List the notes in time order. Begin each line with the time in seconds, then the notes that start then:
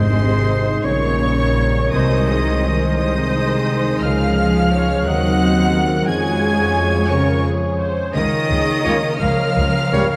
Already playing: G#1 G#2 C3 D#3 G#3 C4 G#4 C5 D#5 G#5 C6
0.13 G#3
0.48 C4 D#4
0.83 A#1 A#2 C#3 G3 A#3 A#4 C#5 C#6
1.21 A#3
1.57 A#3 A#4
1.91 C2 C3 D#3 G#3 C4 C5 D#5 D#6
2.28 G#3 G#4
2.62 G#4 A#4
2.96 D#3 G#4 C5 D#5 D#6
3.33 G#4
3.68 D#4
4.01 C#2 C#3 F3 C#4 A#4 F5 F6
4.05 C#3
4.37 G#3 G#4
4.71 G#4 C#5
5.04 D#2 D#3 F#3 C4 F#4 A#4 D#5 F#5 F#6
5.08 D#3 C4
5.40 C4 C5
5.74 F#4 A#4 C5
6.06 F2 F3 G#3 C#4 F4 G#4 C#5 G#5 G#6
6.42 F4
6.76 C#5
7.08 C#3 A#4 C#5 G#5 C#6
7.43 G#4 C#5
7.78 G#4 C5
8.13 C#2 C#3 D#3 A#4 D#5 D#6
8.49 C#2 A#3 G#4
8.84 C#2 C#3 A#3 C#4 F4 A#4 C#5
9.19 C#2 C#3 F3 F5 F6
9.56 C#2 G3
9.91 C#2 C#3 G3 A#3 G4 A#4 C#5